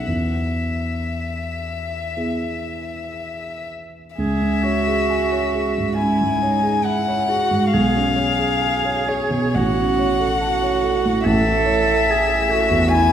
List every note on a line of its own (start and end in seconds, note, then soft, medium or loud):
0.06 4.15 E2 soft
0.06 3.66 E5 soft
2.17 4.15 B3 soft
2.17 4.15 E4 soft
2.17 4.15 G#4 soft
4.16 5.95 C#2 soft
4.16 4.65 G#4 soft
4.16 5.94 E5 medium
4.42 4.78 C#4 soft
4.63 5.99 F#4 soft
4.63 5.00 C#5 soft
4.87 5.23 G#4 soft
5.10 5.46 G#5 soft
5.32 5.68 C#5 soft
5.54 5.90 G#4 soft
5.78 6.13 G#2 soft
5.97 6.35 C#4 soft
5.97 6.43 E4 soft
5.97 6.86 G#5 medium
6.21 6.56 G#2 soft
6.42 6.88 D#4 soft
6.42 6.78 C#5 soft
6.63 6.99 G#4 soft
6.84 7.31 E4 soft
6.84 7.71 F#5 medium
6.84 7.21 G#5 soft
7.08 7.44 C#5 soft
7.28 7.75 F#4 soft
7.28 7.65 G#4 soft
7.51 7.74 G#2 soft
7.71 9.52 B1 soft
7.71 8.17 G#4 soft
7.71 9.09 F5 medium
7.96 8.31 C#4 soft
8.16 9.58 G#4 soft
8.16 8.52 C#5 soft
8.39 8.75 G#4 soft
8.61 8.99 G#5 soft
8.85 9.24 C#5 soft
9.08 9.47 G#4 soft
9.08 9.56 C#5 soft
9.30 9.55 B2 soft
9.55 11.20 A1 soft
9.55 10.42 F#4 soft
9.55 11.24 F#5 medium
9.79 10.13 C#4 soft
9.99 10.33 C#5 soft
10.20 10.54 A4 soft
10.41 11.28 F#4 medium
10.41 10.75 A5 soft
10.63 10.96 C#5 soft
10.84 11.17 A4 soft
11.05 11.26 A2 soft
11.25 12.89 A1 medium
11.25 12.12 A4 medium
11.25 12.89 E5 medium
11.45 11.79 E4 soft
11.65 11.99 C#5 soft
11.87 12.21 E5 soft
12.07 12.54 G#4 medium
12.07 12.41 A5 soft
12.29 12.63 E5 soft
12.49 12.96 F#4 medium
12.49 12.83 A4 soft
12.70 13.05 E2 soft
12.92 13.12 E4 soft
12.92 13.12 E4 medium
12.92 13.12 G#5 medium